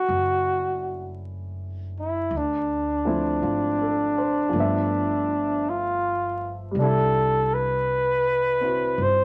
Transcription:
Already playing: grand piano A3 C#4 D4 E4, flugelhorn F#4
0.08 upright bass F#1
2.00 flugelhorn E4
2.31 upright bass D2
2.37 flugelhorn D4
3.05 grand piano F3 A3 C4 E4
3.42 upright bass G#1, grand piano F4
3.81 grand piano A4
4.18 grand piano C5
4.49 upright bass G1, grand piano F3
4.53 grand piano A3 B3
4.60 grand piano E5
5.70 flugelhorn F4
6.71 upright bass C2, grand piano G3
6.79 grand piano D4, flugelhorn A4
6.84 grand piano E4
7.54 flugelhorn B4
8.60 grand piano C4 E4 F#4
8.98 upright bass G1
9.02 flugelhorn C5

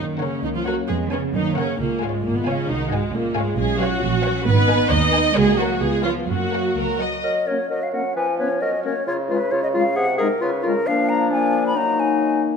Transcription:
Already playing: double bass section F#2, cello section D#3, french horn section A#3 C#4
0.18 cello section C#3, viola section C#4, violin section A#4 C#5 F#5
0.43 double bass section C#2, cello section D#3, viola section D#4
0.54 cello section F3, viola section F4
0.65 cello section F#3, viola section F#4, violin section A#4 C#5 F#5
0.88 double bass section F2, cello section G#3, french horn section B3, viola section G#4
1.11 cello section C#3, viola section C#4, violin section B4 C#5 G#5
1.34 double bass section F#2, cello section D#3, french horn section A#3, viola section D#4
1.56 cello section C#3, viola section C#4, violin section A#4 C#5 F#5
1.78 double bass section C#2, cello section A#2, french horn section G#3 F4, viola section A#3
2.01 cello section G#2, viola section G#3, violin section C#5 F5 G#5
2.24 double bass section G#1, cello section A#2, viola section A#3
2.34 cello section B2, viola section B3
2.46 cello section C#3, viola section C#4, violin section C#5 F5 G#5
2.68 double bass section C2, cello section D#3, viola section D#4, french horn section F#4
2.90 cello section G#2, viola section G#3, violin section D#5 F#5 G#5
3.13 double bass section C#2, cello section A#2, viola section A#3, french horn section F4
3.35 cello section G#2, viola section G#3, violin section C#5 F5 G#5
3.56 double bass section B1, cello section G#3, french horn section C#4, viola section G#4
3.79 cello section F#3, viola section F#4, violin section C#5 F5
4.01 double bass section A#1, french horn section F#4
4.23 violin section C#5 F#5
4.45 double bass section G#1, cello section B3, french horn section B3 D#4, viola section B4
4.68 violin section B4 D#5 G#5
4.90 double bass section D#2, cello section D#4, viola section D#5
5.12 violin section B4 D#5 G#5
5.34 double bass section C#2, cello section G#3, french horn section A#3 F#4, viola section G#4
5.57 cello section F#3, viola section F#4, violin section A#4 C#5 F#5
5.81 double bass section C#2, cello section G#3, french horn section B3 F4, viola section G#4
6.03 cello section F3, viola section F4, violin section B4 C#5 F5
6.27 double bass section F#2, cello section F#3, french horn section A#3 F#4, viola section F#4
6.52 violin section A#4 C#5 F#5
6.75 double bass section C#2, violin section A#4
7.00 violin section D#5 F#5
7.23 bassoon F#3, clarinet A#4, flute D#5
7.47 french horn section A#3 C#4, clarinet A#4, flute C#5
7.70 bassoon F#3, clarinet A#4, flute D#5
7.83 flute F5
7.93 french horn section A#3 C#4, clarinet A#4, flute F#5
8.16 bassoon F3, clarinet B4, flute G#5
8.39 french horn section B3 C#4, clarinet B4, flute C#5
8.61 bassoon F#3, clarinet A#4, flute D#5
8.84 french horn section A#3 C#4, clarinet A#4, flute C#5
9.07 bassoon C#3, clarinet F4, flute C#5
9.28 french horn section G#3 F4, clarinet F4, flute B4
9.51 bassoon C#3, clarinet F4, flute C#5
9.63 flute D#5
9.74 french horn section G#3 F4, clarinet F4, flute F5
9.96 bassoon C3, clarinet G#4, flute F#5
10.18 french horn section G#3 D#4, clarinet G#4, flute A#4
10.41 bassoon C#3, clarinet F4, flute B4
10.63 french horn section G#3 F4, clarinet F4, flute A#4
10.86 bassoon F3, french horn section A#3 D4, clarinet D4, flute F5
11.09 flute A#5
11.31 french horn section A#3 D4, flute G#5
11.67 flute B5
11.75 bassoon F#3, french horn section A#3 D#4, clarinet D#4, flute A#5
12.00 flute G#5

